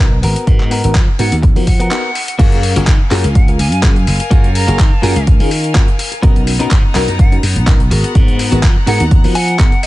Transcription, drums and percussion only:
0.23 open hi-hat medium
0.36 closed hi-hat medium
0.47 kick loud
0.47 closed hi-hat soft
0.60 clap soft
0.71 open hi-hat loud
0.84 closed hi-hat medium
0.95 kick loud
0.95 clap loud
0.95 closed hi-hat medium
1.19 open hi-hat loud
1.32 closed hi-hat medium
1.43 kick loud
1.43 closed hi-hat medium
1.56 open hi-hat medium
1.67 kick medium
1.67 open hi-hat loud
1.80 closed hi-hat medium
1.91 clap loud
1.91 closed hi-hat soft
2.15 open hi-hat medium
2.28 closed hi-hat medium
2.39 kick loud
2.39 closed hi-hat medium
2.39 crash loud
2.52 closed hi-hat soft
2.63 open hi-hat loud
2.76 closed hi-hat medium
2.87 kick loud
2.87 clap loud
2.87 closed hi-hat medium
3.11 clap medium
3.11 open hi-hat loud
3.24 closed hi-hat medium
3.35 kick loud
3.35 closed hi-hat medium
3.48 closed hi-hat soft
3.59 open hi-hat loud
3.72 closed hi-hat medium
3.83 kick loud
3.83 clap loud
3.83 closed hi-hat medium
3.96 closed hi-hat soft
4.07 open hi-hat loud
4.20 closed hi-hat medium
4.31 kick loud
4.31 closed hi-hat medium
4.44 closed hi-hat soft
4.55 open hi-hat loud
4.68 closed hi-hat medium
4.79 kick loud
4.79 clap loud
4.79 closed hi-hat medium
5.03 open hi-hat loud
5.16 closed hi-hat medium
5.27 kick loud
5.27 closed hi-hat medium
5.40 open hi-hat medium
5.51 open hi-hat loud
5.64 closed hi-hat medium
5.75 kick loud
5.75 clap loud
5.75 closed hi-hat medium
5.88 closed hi-hat soft
5.99 open hi-hat loud
6.12 closed hi-hat medium
6.23 kick loud
6.23 closed hi-hat medium
6.36 closed hi-hat soft
6.47 open hi-hat loud
6.60 closed hi-hat medium
6.71 kick loud
6.71 clap loud
6.71 closed hi-hat medium
6.95 clap medium
6.95 open hi-hat loud
7.08 closed hi-hat medium
7.19 kick loud
7.19 closed hi-hat medium
7.32 closed hi-hat soft
7.43 open hi-hat loud
7.56 closed hi-hat medium
7.67 kick loud
7.67 clap loud
7.67 closed hi-hat medium
7.80 closed hi-hat soft
7.91 open hi-hat loud
8.04 closed hi-hat medium
8.15 kick loud
8.15 closed hi-hat medium
8.28 closed hi-hat soft
8.39 open hi-hat loud
8.52 closed hi-hat medium
8.63 kick loud
8.63 clap loud
8.63 closed hi-hat medium
8.87 open hi-hat loud
9.00 closed hi-hat medium
9.11 kick loud
9.11 closed hi-hat medium
9.24 open hi-hat medium
9.35 open hi-hat loud
9.48 closed hi-hat soft
9.59 kick loud
9.59 clap loud
9.59 closed hi-hat medium
9.72 closed hi-hat soft
9.83 open hi-hat loud

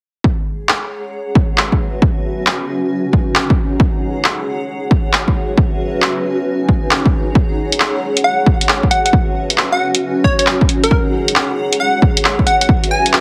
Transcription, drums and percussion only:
0.24 kick loud
0.69 clap loud
1.35 kick loud
1.58 clap loud
1.72 kick medium
2.02 kick loud
2.47 clap loud
3.13 kick medium
3.35 clap loud
3.50 kick loud
3.80 kick loud
4.24 clap loud
4.91 kick loud
5.13 clap loud
5.28 kick medium
5.58 kick loud
6.02 clap loud
6.69 kick medium
6.91 clap loud
7.06 kick loud
7.35 kick loud
7.72 closed hi-hat medium
7.80 clap loud
8.17 closed hi-hat medium
8.46 kick loud
8.61 closed hi-hat medium
8.69 clap loud
8.83 kick medium
8.91 closed hi-hat soft
9.06 closed hi-hat medium
9.13 kick loud
9.50 closed hi-hat medium
9.58 clap loud
9.95 closed hi-hat medium
10.24 kick medium
10.39 closed hi-hat medium
10.47 clap loud
10.61 kick medium
10.69 closed hi-hat soft
10.84 closed hi-hat medium
10.91 kick loud
11.28 closed hi-hat medium
11.36 clap loud
11.73 closed hi-hat medium
12.02 kick medium
12.17 closed hi-hat medium
12.25 clap loud
12.39 kick medium
12.47 closed hi-hat medium
12.61 closed hi-hat medium
12.69 kick loud
12.84 closed hi-hat soft
13.06 closed hi-hat medium
13.13 clap loud

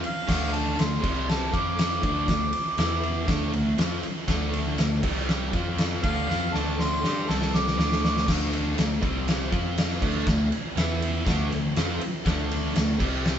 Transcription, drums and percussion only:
0.04 ride medium
0.29 kick loud
0.29 snare loud
0.29 crash loud
0.54 ride medium
0.79 snare loud
0.79 ride loud
1.04 kick loud
1.04 crash loud
1.30 snare loud
1.54 kick medium
1.54 ride medium
1.79 snare loud
1.79 ride loud
2.03 kick loud
2.03 ride medium
2.28 kick medium
2.28 snare loud
2.28 ride medium
2.53 ride medium
2.78 snare loud
2.78 ride medium
3.03 ride medium
3.28 kick loud
3.28 snare loud
3.28 ride loud
3.53 ride medium
3.78 snare loud
3.78 ride loud
4.03 ride medium
4.28 kick loud
4.28 snare loud
4.28 ride loud
4.53 ride medium
4.78 snare loud
4.78 ride loud
5.03 kick loud
5.03 crash loud
5.29 snare loud
5.53 kick medium
5.53 ride medium
5.78 snare loud
5.78 ride loud
6.04 kick loud
6.04 ride medium
6.30 snare medium
6.54 snare medium
6.79 snare medium
7.04 snare medium
7.29 snare medium
7.42 snare medium
7.54 snare medium
7.67 snare medium
7.79 snare loud
7.92 snare medium
8.05 snare loud
8.17 snare medium
8.28 kick loud
8.28 snare loud
8.28 crash loud
8.53 ride medium
8.78 snare loud
8.78 ride loud
9.03 kick loud
9.03 ride medium
9.28 snare loud
9.28 ride loud
9.53 kick loud
9.53 ride medium
9.78 snare loud
9.78 ride loud
10.02 kick loud
10.02 crash loud
10.27 kick loud
10.27 snare medium
10.52 ride medium
10.77 snare loud
10.77 ride loud
11.02 ride medium
11.27 kick loud
11.27 snare loud
11.27 ride medium
11.52 ride medium
11.76 snare loud
11.76 ride loud
12.01 ride medium
12.26 kick loud
12.26 snare loud
12.26 ride medium
12.52 ride medium
12.76 snare loud
12.76 ride loud
13.00 kick loud
13.00 crash loud
13.26 snare loud

